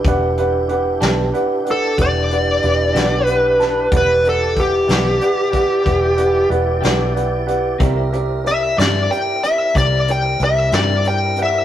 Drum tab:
HH |xxxxxxxxxxxx|xxxxxxxxxxxx|xxxxxxxxxxxx|
SD |---o-----o-o|---o-----o--|---o-----o--|
BD |o-----o-----|o-o--oo-----|o-----o-----|